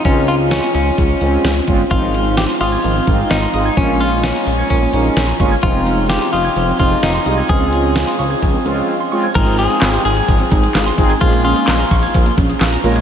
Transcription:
<<
  \new Staff \with { instrumentName = "Synth pluck" } { \time 4/4 \key aes \major \tempo 4 = 129 r1 | f16 c'16 ees'16 r16 f''16 c'''16 ees'''16 aes'''16 f16 c'16 ees'16 aes'16 f''16 c'''16 ees'''16 aes'''16 | f16 bes16 des'16 r16 f''16 bes''16 des'''16 aes'''16 f16 bes16 des'16 aes'16 f''16 bes''16 des'''16 aes'''16 | f16 c'16 ees'16 r16 f''16 c'''16 ees'''16 aes'''16 f16 c'16 ees'16 aes'16 f''16 c'''16 ees'''16 aes'''16 |
f16 c'16 des'16 r16 f''16 c'''16 des'''16 aes'''16 f16 c'16 des'16 aes'16 f''16 c'''16 des'''16 aes'''16 | f16 c'16 ees'16 aes'16 f''16 c'''16 ees'''16 aes'''16 f16 c'16 ees'16 aes'16 f''16 c'''16 r16 aes'''16 | f16 bes16 des'16 aes'16 f''16 bes''16 des'''16 aes'''16 f16 bes16 des'16 aes'16 f''16 bes''16 r16 aes'''16 | }
  \new Staff \with { instrumentName = "Clean electric guitar" } { \time 4/4 \key aes \major des'8 f'8 des'8 des'2 r8 | f'4 g'8 f'4. ees'4 | des'8 f'8 des'4 des'4. r8 | f'4 g'8 f'4 f'8 ees'4 |
aes'2 r2 | bes'8 aes'4 aes'2~ aes'8 | f'8 f'2 r4. | }
  \new Staff \with { instrumentName = "Analog polysynth" } { \time 4/4 \key aes \major <aes c' des' f'>4~ <aes c' des' f'>16 r4 r16 <aes c' des' f'>8 r8 <aes c' des' f'>8 | <aes c' ees' f'>4~ <aes c' ees' f'>16 r4 r16 <aes c' ees' f'>8 r8 <aes c' ees' f'>8 | <aes bes des' f'>4~ <aes bes des' f'>16 r4 r16 <aes bes des' ees'>8 r8 <aes bes des' f'>8 | <aes c' ees' f'>4~ <aes c' ees' f'>16 r4 r16 <aes c' ees' f'>8 r8 <aes c' ees' f'>8 |
<aes c' des' f'>4~ <aes c' des' f'>16 r4 r16 <aes c' des' f'>8 r8 <aes c' des' f'>8 | <aes c' ees' f' aes'>4~ <aes c' ees' f' aes'>16 r2 r16 <aes c' ees' f' aes'>8 | <aes bes des' f' aes'>4~ <aes bes des' f' aes'>16 r2 r16 <aes bes des' f' bes'>8 | }
  \new Staff \with { instrumentName = "Analog synth bass" } { \clef bass \time 4/4 \key aes \major des,4~ des,16 r16 des,8 des,8 des,8 des,8 g,,8 | aes,,4~ aes,,16 r16 aes,,8 aes,,8 aes,,8 aes,,8 aes,,8 | bes,,4~ bes,,16 r16 bes,,8 bes,,8 bes,,8 bes,,8 g,,8 | f,,4~ f,,16 r16 f,,8 f,,8 f,,8 f,,8 c,8 |
des,4~ des,16 r16 des,8 des,8 des,8 r4 | aes,,4 aes,,8 aes,,8 aes,,8 aes,,8 aes,,8 aes,,8 | bes,,4 bes,,8 bes,,8 bes,,8 bes,,8 bes,,8 bes,,8 | }
  \new DrumStaff \with { instrumentName = "Drums" } \drummode { \time 4/4 <hh bd>8 hh8 <hh sn>8 hh8 <hh bd>8 hh8 <hh sn>8 <hh bd>8 | <hh bd>8 hh8 <hh sn>8 hh8 hh8 <hh bd>8 <hh sn>8 hh8 | <hh bd>8 hh8 <hh sn>8 hh8 <hh bd>8 hh8 <hh sn>8 <hh bd>8 | <hh bd>8 hh8 <hh sn>8 hh8 hh8 <hh bd>8 <hh sn>8 hh8 |
<hh bd>8 hh8 <hh sn>8 hh8 <hh bd>8 hh8 r4 | <cymc hh bd>16 hh16 hh16 hh16 <hc hh sn>16 hh16 hh16 hh16 <hh bd>16 hh16 <hh bd>16 hh16 <hc hh sn>16 hh16 <hho bd>16 hh16 | <hh bd>16 hh16 hh16 hh16 <hc hh sn>16 hh16 <hh bd>16 hh16 <hh bd>16 hh16 <hh bd>16 hh16 <hc hh sn>16 hh16 hho16 hh16 | }
>>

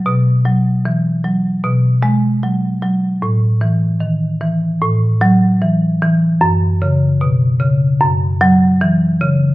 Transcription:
\new Staff \with { instrumentName = "Marimba" } { \clef bass \time 4/4 \key b \mixolydian \tempo 4 = 76 << { r2 r8 gis4 r8 | r2 r8 fis4 r8 | r2 r8 fis4 r8 | } \\ { b,8 fis8 e8 fis8 b,4 fis8 fis8 | a,8 e8 dis8 e8 a,4 e8 e8 | fis,8 cis8 b,8 cis8 fis,4 e8 cis8 | } >> }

